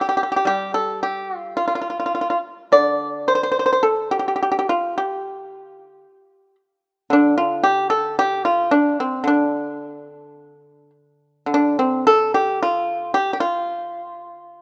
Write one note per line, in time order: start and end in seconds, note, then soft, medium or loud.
0.01 0.08 G4 soft
0.09 0.15 G4 medium
0.17 0.22 G4 soft
0.23 0.30 G4 soft
0.32 0.35 G4 soft
0.36 0.44 G4 soft
0.45 3.86 G3 soft
0.45 0.73 G4 medium
0.74 1.01 A4 medium
1.03 1.37 G4 medium
1.37 1.56 F4 medium
1.57 1.65 F4 medium
1.68 1.74 F4 soft
1.75 1.80 F4 soft
1.82 1.89 F4 soft
1.90 1.98 F4 soft
2.00 2.05 F4 soft
2.06 2.13 F4 soft
2.15 2.20 F4 soft
2.21 2.29 F4 soft
2.30 2.37 F4 soft
2.72 6.05 D3 soft
2.72 3.26 D5 medium
3.28 3.34 C5 medium
3.35 3.42 C5 soft
3.43 3.50 C5 medium
3.52 3.58 C5 soft
3.59 3.65 C5 soft
3.66 3.71 C5 soft
3.73 3.81 C5 medium
3.83 4.11 A4 medium
4.11 4.18 G4 medium
4.19 4.27 G4 soft
4.28 4.35 G4 soft
4.36 4.41 G4 soft
4.43 4.50 G4 soft
4.52 4.58 G4 soft
4.59 4.66 G4 soft
4.69 4.95 F4 medium
4.98 6.55 G4 medium
7.10 9.22 D3 soft
7.10 7.37 D4 medium
7.38 7.62 F4 medium
7.63 7.88 G4 medium
7.90 8.15 A4 medium
8.19 8.43 G4 medium
8.45 8.70 F4 medium
8.71 8.96 D4 medium
9.00 9.25 C4 medium
9.24 11.45 D3 soft
9.24 10.90 D4 medium
11.46 14.62 D3 soft
11.54 11.78 D4 medium
11.79 12.04 C4 medium
12.07 12.31 A4 medium
12.34 12.59 G4 medium
12.63 13.12 F4 medium
13.14 13.32 G4 medium
13.33 13.40 G4 medium
13.40 14.62 F4 medium